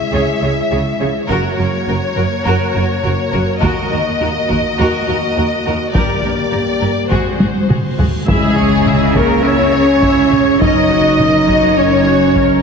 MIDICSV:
0, 0, Header, 1, 12, 480
1, 0, Start_track
1, 0, Tempo, 582524
1, 1065, Time_signature, 4, 2, 24, 8
1, 10401, End_track
2, 0, Start_track
2, 0, Title_t, "Flute section"
2, 0, Program_c, 0, 73
2, 6818, Note_on_c, 0, 68, 69
2, 7508, Note_off_c, 0, 68, 0
2, 7549, Note_on_c, 0, 70, 65
2, 7777, Note_on_c, 0, 73, 91
2, 7782, Note_off_c, 0, 70, 0
2, 8721, Note_off_c, 0, 73, 0
2, 8741, Note_on_c, 0, 75, 81
2, 9699, Note_on_c, 0, 73, 81
2, 9702, Note_off_c, 0, 75, 0
2, 10401, Note_off_c, 0, 73, 0
2, 10401, End_track
3, 0, Start_track
3, 0, Title_t, "Trumpet section"
3, 0, Program_c, 1, 61
3, 6817, Note_on_c, 1, 68, 71
3, 7508, Note_off_c, 1, 68, 0
3, 7541, Note_on_c, 1, 70, 66
3, 7778, Note_off_c, 1, 70, 0
3, 7782, Note_on_c, 1, 73, 81
3, 8741, Note_on_c, 1, 75, 83
3, 8743, Note_off_c, 1, 73, 0
3, 9683, Note_off_c, 1, 75, 0
3, 9704, Note_on_c, 1, 73, 75
3, 10401, Note_off_c, 1, 73, 0
3, 10401, End_track
4, 0, Start_track
4, 0, Title_t, "Violin section"
4, 0, Program_c, 2, 48
4, 0, Note_on_c, 2, 76, 36
4, 1028, Note_off_c, 2, 76, 0
4, 1048, Note_on_c, 2, 73, 46
4, 2943, Note_off_c, 2, 73, 0
4, 2979, Note_on_c, 2, 75, 55
4, 4869, Note_off_c, 2, 75, 0
4, 4896, Note_on_c, 2, 74, 45
4, 5841, Note_off_c, 2, 74, 0
4, 5857, Note_on_c, 2, 72, 34
4, 6640, Note_off_c, 2, 72, 0
4, 6818, Note_on_c, 2, 68, 71
4, 7508, Note_off_c, 2, 68, 0
4, 7534, Note_on_c, 2, 70, 69
4, 7779, Note_off_c, 2, 70, 0
4, 7779, Note_on_c, 2, 73, 82
4, 8742, Note_off_c, 2, 73, 0
4, 8744, Note_on_c, 2, 75, 86
4, 9685, Note_off_c, 2, 75, 0
4, 9703, Note_on_c, 2, 73, 77
4, 10401, Note_off_c, 2, 73, 0
4, 10401, End_track
5, 0, Start_track
5, 0, Title_t, "Violin section"
5, 0, Program_c, 3, 48
5, 104, Note_on_c, 3, 73, 36
5, 327, Note_off_c, 3, 73, 0
5, 342, Note_on_c, 3, 73, 38
5, 408, Note_off_c, 3, 73, 0
5, 586, Note_on_c, 3, 73, 34
5, 652, Note_off_c, 3, 73, 0
5, 825, Note_on_c, 3, 73, 36
5, 891, Note_off_c, 3, 73, 0
5, 1065, Note_on_c, 3, 70, 53
5, 1288, Note_off_c, 3, 70, 0
5, 1312, Note_on_c, 3, 70, 35
5, 1378, Note_off_c, 3, 70, 0
5, 1549, Note_on_c, 3, 70, 39
5, 1615, Note_off_c, 3, 70, 0
5, 1778, Note_on_c, 3, 70, 47
5, 1844, Note_off_c, 3, 70, 0
5, 2022, Note_on_c, 3, 70, 54
5, 2246, Note_off_c, 3, 70, 0
5, 2270, Note_on_c, 3, 70, 41
5, 2336, Note_off_c, 3, 70, 0
5, 2504, Note_on_c, 3, 70, 44
5, 2570, Note_off_c, 3, 70, 0
5, 2735, Note_on_c, 3, 70, 49
5, 2801, Note_off_c, 3, 70, 0
5, 2981, Note_on_c, 3, 70, 52
5, 3206, Note_off_c, 3, 70, 0
5, 3221, Note_on_c, 3, 70, 36
5, 3287, Note_off_c, 3, 70, 0
5, 3465, Note_on_c, 3, 70, 43
5, 3531, Note_off_c, 3, 70, 0
5, 3702, Note_on_c, 3, 70, 43
5, 3768, Note_off_c, 3, 70, 0
5, 3944, Note_on_c, 3, 70, 51
5, 4168, Note_off_c, 3, 70, 0
5, 4184, Note_on_c, 3, 70, 48
5, 4250, Note_off_c, 3, 70, 0
5, 4424, Note_on_c, 3, 70, 40
5, 4489, Note_off_c, 3, 70, 0
5, 4666, Note_on_c, 3, 70, 42
5, 4732, Note_off_c, 3, 70, 0
5, 4895, Note_on_c, 3, 70, 47
5, 5123, Note_off_c, 3, 70, 0
5, 5134, Note_on_c, 3, 70, 30
5, 5200, Note_off_c, 3, 70, 0
5, 5371, Note_on_c, 3, 70, 31
5, 5437, Note_off_c, 3, 70, 0
5, 5616, Note_on_c, 3, 70, 36
5, 5682, Note_off_c, 3, 70, 0
5, 5844, Note_on_c, 3, 68, 35
5, 6077, Note_off_c, 3, 68, 0
5, 6094, Note_on_c, 3, 68, 28
5, 6160, Note_off_c, 3, 68, 0
5, 6339, Note_on_c, 3, 68, 27
5, 6405, Note_off_c, 3, 68, 0
5, 6581, Note_on_c, 3, 68, 31
5, 6647, Note_off_c, 3, 68, 0
5, 6817, Note_on_c, 3, 68, 70
5, 7508, Note_off_c, 3, 68, 0
5, 7540, Note_on_c, 3, 70, 68
5, 7781, Note_on_c, 3, 73, 78
5, 7782, Note_off_c, 3, 70, 0
5, 8743, Note_off_c, 3, 73, 0
5, 8744, Note_on_c, 3, 75, 84
5, 9685, Note_off_c, 3, 75, 0
5, 9709, Note_on_c, 3, 73, 68
5, 10401, Note_off_c, 3, 73, 0
5, 10401, End_track
6, 0, Start_track
6, 0, Title_t, "Viola section"
6, 0, Program_c, 4, 48
6, 113, Note_on_c, 4, 68, 44
6, 332, Note_off_c, 4, 68, 0
6, 356, Note_on_c, 4, 68, 34
6, 422, Note_off_c, 4, 68, 0
6, 585, Note_on_c, 4, 68, 37
6, 651, Note_off_c, 4, 68, 0
6, 825, Note_on_c, 4, 68, 35
6, 891, Note_off_c, 4, 68, 0
6, 1065, Note_on_c, 4, 66, 49
6, 1288, Note_off_c, 4, 66, 0
6, 1308, Note_on_c, 4, 66, 33
6, 1374, Note_off_c, 4, 66, 0
6, 1548, Note_on_c, 4, 66, 39
6, 1613, Note_off_c, 4, 66, 0
6, 1788, Note_on_c, 4, 66, 34
6, 1854, Note_off_c, 4, 66, 0
6, 2026, Note_on_c, 4, 66, 52
6, 2249, Note_off_c, 4, 66, 0
6, 2270, Note_on_c, 4, 66, 44
6, 2336, Note_off_c, 4, 66, 0
6, 2500, Note_on_c, 4, 66, 43
6, 2566, Note_off_c, 4, 66, 0
6, 2745, Note_on_c, 4, 66, 48
6, 2811, Note_off_c, 4, 66, 0
6, 2981, Note_on_c, 4, 66, 58
6, 3206, Note_off_c, 4, 66, 0
6, 3229, Note_on_c, 4, 66, 35
6, 3295, Note_off_c, 4, 66, 0
6, 3471, Note_on_c, 4, 66, 44
6, 3537, Note_off_c, 4, 66, 0
6, 3705, Note_on_c, 4, 66, 41
6, 3771, Note_off_c, 4, 66, 0
6, 3947, Note_on_c, 4, 66, 57
6, 4169, Note_off_c, 4, 66, 0
6, 4180, Note_on_c, 4, 66, 38
6, 4246, Note_off_c, 4, 66, 0
6, 4425, Note_on_c, 4, 66, 39
6, 4491, Note_off_c, 4, 66, 0
6, 4668, Note_on_c, 4, 66, 44
6, 4734, Note_off_c, 4, 66, 0
6, 4898, Note_on_c, 4, 67, 51
6, 5122, Note_off_c, 4, 67, 0
6, 5132, Note_on_c, 4, 67, 31
6, 5198, Note_off_c, 4, 67, 0
6, 5369, Note_on_c, 4, 67, 38
6, 5434, Note_off_c, 4, 67, 0
6, 5617, Note_on_c, 4, 67, 34
6, 5683, Note_off_c, 4, 67, 0
6, 5851, Note_on_c, 4, 66, 46
6, 6081, Note_off_c, 4, 66, 0
6, 6092, Note_on_c, 4, 66, 27
6, 6158, Note_off_c, 4, 66, 0
6, 6332, Note_on_c, 4, 66, 35
6, 6398, Note_off_c, 4, 66, 0
6, 6581, Note_on_c, 4, 66, 30
6, 6647, Note_off_c, 4, 66, 0
6, 6816, Note_on_c, 4, 64, 58
6, 6816, Note_on_c, 4, 76, 62
6, 7043, Note_off_c, 4, 64, 0
6, 7043, Note_off_c, 4, 76, 0
6, 7060, Note_on_c, 4, 73, 52
6, 7061, Note_on_c, 4, 68, 52
6, 7302, Note_off_c, 4, 68, 0
6, 7302, Note_off_c, 4, 73, 0
6, 7302, Note_on_c, 4, 76, 53
6, 7304, Note_on_c, 4, 64, 58
6, 7543, Note_off_c, 4, 76, 0
6, 7544, Note_off_c, 4, 64, 0
6, 7549, Note_on_c, 4, 68, 52
6, 7551, Note_on_c, 4, 73, 54
6, 7782, Note_on_c, 4, 64, 55
6, 7782, Note_on_c, 4, 76, 58
6, 7786, Note_off_c, 4, 68, 0
6, 7787, Note_off_c, 4, 73, 0
6, 8006, Note_off_c, 4, 64, 0
6, 8006, Note_off_c, 4, 76, 0
6, 8028, Note_on_c, 4, 73, 52
6, 8029, Note_on_c, 4, 68, 52
6, 8266, Note_off_c, 4, 73, 0
6, 8267, Note_off_c, 4, 68, 0
6, 8269, Note_on_c, 4, 76, 56
6, 8270, Note_on_c, 4, 64, 59
6, 8507, Note_off_c, 4, 64, 0
6, 8507, Note_off_c, 4, 76, 0
6, 8509, Note_on_c, 4, 68, 56
6, 8509, Note_on_c, 4, 73, 52
6, 8747, Note_off_c, 4, 68, 0
6, 8747, Note_off_c, 4, 73, 0
6, 8750, Note_on_c, 4, 70, 64
6, 8752, Note_on_c, 4, 61, 59
6, 8970, Note_off_c, 4, 70, 0
6, 8971, Note_off_c, 4, 61, 0
6, 8985, Note_on_c, 4, 73, 53
6, 8986, Note_on_c, 4, 66, 54
6, 9225, Note_off_c, 4, 66, 0
6, 9225, Note_off_c, 4, 73, 0
6, 9234, Note_on_c, 4, 61, 61
6, 9235, Note_on_c, 4, 70, 59
6, 9467, Note_on_c, 4, 73, 55
6, 9469, Note_off_c, 4, 61, 0
6, 9470, Note_off_c, 4, 70, 0
6, 9472, Note_on_c, 4, 66, 56
6, 9706, Note_off_c, 4, 73, 0
6, 9708, Note_off_c, 4, 66, 0
6, 9709, Note_on_c, 4, 61, 57
6, 9712, Note_on_c, 4, 70, 55
6, 9930, Note_off_c, 4, 61, 0
6, 9932, Note_off_c, 4, 70, 0
6, 9954, Note_on_c, 4, 66, 54
6, 9955, Note_on_c, 4, 73, 54
6, 10185, Note_on_c, 4, 61, 57
6, 10186, Note_on_c, 4, 70, 59
6, 10189, Note_off_c, 4, 66, 0
6, 10190, Note_off_c, 4, 73, 0
6, 10401, Note_off_c, 4, 61, 0
6, 10401, Note_off_c, 4, 70, 0
6, 10401, End_track
7, 0, Start_track
7, 0, Title_t, "French horn section"
7, 0, Program_c, 5, 60
7, 0, Note_on_c, 5, 56, 40
7, 0, Note_on_c, 5, 64, 40
7, 1034, Note_off_c, 5, 56, 0
7, 1034, Note_off_c, 5, 64, 0
7, 1057, Note_on_c, 5, 58, 50
7, 1060, Note_on_c, 5, 66, 49
7, 4760, Note_off_c, 5, 58, 0
7, 4760, Note_off_c, 5, 66, 0
7, 4900, Note_on_c, 5, 58, 45
7, 4901, Note_on_c, 5, 67, 46
7, 5829, Note_off_c, 5, 58, 0
7, 5830, Note_off_c, 5, 67, 0
7, 5856, Note_on_c, 5, 60, 39
7, 5856, Note_on_c, 5, 66, 38
7, 6547, Note_off_c, 5, 60, 0
7, 6547, Note_off_c, 5, 66, 0
7, 6812, Note_on_c, 5, 56, 80
7, 7505, Note_off_c, 5, 56, 0
7, 7535, Note_on_c, 5, 58, 78
7, 7768, Note_on_c, 5, 61, 99
7, 7780, Note_off_c, 5, 58, 0
7, 8730, Note_on_c, 5, 63, 104
7, 8736, Note_off_c, 5, 61, 0
7, 9678, Note_off_c, 5, 63, 0
7, 9701, Note_on_c, 5, 61, 98
7, 10401, Note_off_c, 5, 61, 0
7, 10401, End_track
8, 0, Start_track
8, 0, Title_t, "Cello section"
8, 0, Program_c, 6, 48
8, 102, Note_on_c, 6, 49, 45
8, 168, Note_off_c, 6, 49, 0
8, 347, Note_on_c, 6, 49, 31
8, 413, Note_off_c, 6, 49, 0
8, 591, Note_on_c, 6, 49, 33
8, 656, Note_off_c, 6, 49, 0
8, 833, Note_on_c, 6, 49, 34
8, 899, Note_off_c, 6, 49, 0
8, 1070, Note_on_c, 6, 42, 52
8, 1136, Note_off_c, 6, 42, 0
8, 1308, Note_on_c, 6, 42, 39
8, 1374, Note_off_c, 6, 42, 0
8, 1553, Note_on_c, 6, 42, 40
8, 1619, Note_off_c, 6, 42, 0
8, 1794, Note_on_c, 6, 42, 39
8, 1860, Note_off_c, 6, 42, 0
8, 2030, Note_on_c, 6, 42, 53
8, 2096, Note_off_c, 6, 42, 0
8, 2270, Note_on_c, 6, 42, 42
8, 2336, Note_off_c, 6, 42, 0
8, 2513, Note_on_c, 6, 42, 42
8, 2579, Note_off_c, 6, 42, 0
8, 2752, Note_on_c, 6, 42, 42
8, 2818, Note_off_c, 6, 42, 0
8, 2986, Note_on_c, 6, 39, 67
8, 3052, Note_off_c, 6, 39, 0
8, 3230, Note_on_c, 6, 39, 42
8, 3296, Note_off_c, 6, 39, 0
8, 3472, Note_on_c, 6, 39, 45
8, 3538, Note_off_c, 6, 39, 0
8, 3713, Note_on_c, 6, 39, 41
8, 3779, Note_off_c, 6, 39, 0
8, 3945, Note_on_c, 6, 39, 59
8, 4010, Note_off_c, 6, 39, 0
8, 4192, Note_on_c, 6, 39, 40
8, 4258, Note_off_c, 6, 39, 0
8, 4427, Note_on_c, 6, 39, 41
8, 4493, Note_off_c, 6, 39, 0
8, 4666, Note_on_c, 6, 39, 40
8, 4732, Note_off_c, 6, 39, 0
8, 4907, Note_on_c, 6, 43, 52
8, 4973, Note_off_c, 6, 43, 0
8, 5150, Note_on_c, 6, 43, 36
8, 5216, Note_off_c, 6, 43, 0
8, 5379, Note_on_c, 6, 43, 35
8, 5445, Note_off_c, 6, 43, 0
8, 5619, Note_on_c, 6, 43, 28
8, 5685, Note_off_c, 6, 43, 0
8, 5862, Note_on_c, 6, 44, 44
8, 5928, Note_off_c, 6, 44, 0
8, 6099, Note_on_c, 6, 44, 29
8, 6165, Note_off_c, 6, 44, 0
8, 6332, Note_on_c, 6, 44, 29
8, 6398, Note_off_c, 6, 44, 0
8, 6574, Note_on_c, 6, 44, 30
8, 6640, Note_off_c, 6, 44, 0
8, 6813, Note_on_c, 6, 49, 69
8, 8706, Note_off_c, 6, 49, 0
8, 8745, Note_on_c, 6, 42, 73
8, 10401, Note_off_c, 6, 42, 0
8, 10401, End_track
9, 0, Start_track
9, 0, Title_t, "Double bass section"
9, 0, Program_c, 7, 48
9, 100, Note_on_c, 7, 37, 47
9, 166, Note_off_c, 7, 37, 0
9, 344, Note_on_c, 7, 37, 29
9, 410, Note_off_c, 7, 37, 0
9, 588, Note_on_c, 7, 37, 36
9, 654, Note_off_c, 7, 37, 0
9, 830, Note_on_c, 7, 37, 35
9, 896, Note_off_c, 7, 37, 0
9, 1067, Note_on_c, 7, 30, 56
9, 1133, Note_off_c, 7, 30, 0
9, 1307, Note_on_c, 7, 30, 35
9, 1373, Note_off_c, 7, 30, 0
9, 1542, Note_on_c, 7, 30, 42
9, 1608, Note_off_c, 7, 30, 0
9, 1782, Note_on_c, 7, 30, 46
9, 1848, Note_off_c, 7, 30, 0
9, 2024, Note_on_c, 7, 30, 61
9, 2090, Note_off_c, 7, 30, 0
9, 2267, Note_on_c, 7, 30, 41
9, 2333, Note_off_c, 7, 30, 0
9, 2506, Note_on_c, 7, 30, 43
9, 2572, Note_off_c, 7, 30, 0
9, 2748, Note_on_c, 7, 30, 42
9, 2814, Note_off_c, 7, 30, 0
9, 2991, Note_on_c, 7, 39, 66
9, 3057, Note_off_c, 7, 39, 0
9, 3223, Note_on_c, 7, 39, 41
9, 3289, Note_off_c, 7, 39, 0
9, 3463, Note_on_c, 7, 39, 42
9, 3529, Note_off_c, 7, 39, 0
9, 3697, Note_on_c, 7, 39, 42
9, 3763, Note_off_c, 7, 39, 0
9, 3938, Note_on_c, 7, 39, 61
9, 4004, Note_off_c, 7, 39, 0
9, 4179, Note_on_c, 7, 39, 39
9, 4245, Note_off_c, 7, 39, 0
9, 4423, Note_on_c, 7, 39, 42
9, 4489, Note_off_c, 7, 39, 0
9, 4662, Note_on_c, 7, 39, 38
9, 4728, Note_off_c, 7, 39, 0
9, 4899, Note_on_c, 7, 31, 50
9, 4965, Note_off_c, 7, 31, 0
9, 5137, Note_on_c, 7, 31, 33
9, 5203, Note_off_c, 7, 31, 0
9, 5378, Note_on_c, 7, 31, 33
9, 5444, Note_off_c, 7, 31, 0
9, 5612, Note_on_c, 7, 31, 36
9, 5678, Note_off_c, 7, 31, 0
9, 5854, Note_on_c, 7, 32, 45
9, 5920, Note_off_c, 7, 32, 0
9, 6097, Note_on_c, 7, 32, 30
9, 6163, Note_off_c, 7, 32, 0
9, 6333, Note_on_c, 7, 32, 32
9, 6399, Note_off_c, 7, 32, 0
9, 6573, Note_on_c, 7, 32, 33
9, 6639, Note_off_c, 7, 32, 0
9, 6810, Note_on_c, 7, 37, 65
9, 8704, Note_off_c, 7, 37, 0
9, 8740, Note_on_c, 7, 30, 73
9, 10401, Note_off_c, 7, 30, 0
9, 10401, End_track
10, 0, Start_track
10, 0, Title_t, "Reverse cymbal"
10, 0, Program_c, 8, 119
10, 4896, Note_on_c, 8, 60, 52
10, 6820, Note_off_c, 8, 60, 0
10, 10401, End_track
11, 0, Start_track
11, 0, Title_t, "Sub drop"
11, 0, Program_c, 10, 103
11, 6816, Note_on_c, 10, 60, 73
11, 8740, Note_off_c, 10, 60, 0
11, 10401, End_track
12, 0, Start_track
12, 0, Title_t, "Taiko and cinematic ensemble drums"
12, 2985, Note_on_c, 9, 41, 57
12, 3068, Note_off_c, 9, 41, 0
12, 3706, Note_on_c, 9, 41, 32
12, 3788, Note_off_c, 9, 41, 0
12, 4900, Note_on_c, 9, 41, 80
12, 4983, Note_off_c, 9, 41, 0
12, 5863, Note_on_c, 9, 41, 57
12, 5945, Note_off_c, 9, 41, 0
12, 6098, Note_on_c, 9, 48, 69
12, 6181, Note_off_c, 9, 48, 0
12, 6346, Note_on_c, 9, 47, 72
12, 6429, Note_off_c, 9, 47, 0
12, 6583, Note_on_c, 9, 43, 71
12, 6665, Note_off_c, 9, 43, 0
12, 6825, Note_on_c, 9, 41, 95
12, 6907, Note_off_c, 9, 41, 0
12, 7303, Note_on_c, 9, 47, 54
12, 7386, Note_off_c, 9, 47, 0
12, 7544, Note_on_c, 9, 41, 75
12, 7626, Note_off_c, 9, 41, 0
12, 8260, Note_on_c, 9, 41, 83
12, 8342, Note_off_c, 9, 41, 0
12, 8507, Note_on_c, 9, 47, 53
12, 8589, Note_off_c, 9, 47, 0
12, 8746, Note_on_c, 9, 41, 98
12, 8828, Note_off_c, 9, 41, 0
12, 9224, Note_on_c, 9, 47, 61
12, 9306, Note_off_c, 9, 47, 0
12, 9463, Note_on_c, 9, 41, 70
12, 9546, Note_off_c, 9, 41, 0
12, 10181, Note_on_c, 9, 41, 81
12, 10263, Note_off_c, 9, 41, 0
12, 10401, End_track
0, 0, End_of_file